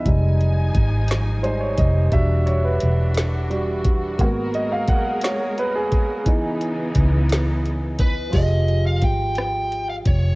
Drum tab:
CC |------|------|------|------|
HH |xxxxxx|xxxxxx|xxxxxx|xxxxxx|
SD |---o--|---o--|---o--|---o--|
BD |o-o--o|o----o|o-o--o|o-o--o|

CC |x-----|
HH |xxxxxx|
SD |---r--|
BD |o-o--o|